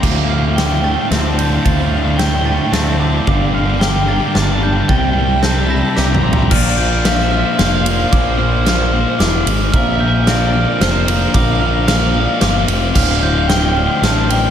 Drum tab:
CC |x-----------------|------------------|------------------|------------------|
RD |------x-----x--x--|x-----x-----x-----|------------------|------------------|
SD |------o-----o-----|------o-----o-----|------o-----o-----|------o-----o-----|
T2 |------------------|------------------|------------------|--------------o---|
FT |------------------|------------------|------------------|----------------o-|
BD |o-----------------|o-----------------|o-----------------|o-----------------|

CC |x-----------------|------------------|------------------|------------------|
RD |------x-----x--x--|x-----x-----x--x--|x-----x-----x--x--|x-----x-----x--x--|
SD |------o-----o-----|------o-----o-----|------o-----o-----|------o-----o-----|
T2 |------------------|------------------|------------------|------------------|
FT |------------------|------------------|------------------|------------------|
BD |o-----------------|o-----------------|o-----------------|o-----------------|

CC |x-----------------|
RD |------x-----x--x--|
SD |------o-----o-----|
T2 |------------------|
FT |------------------|
BD |o-----------------|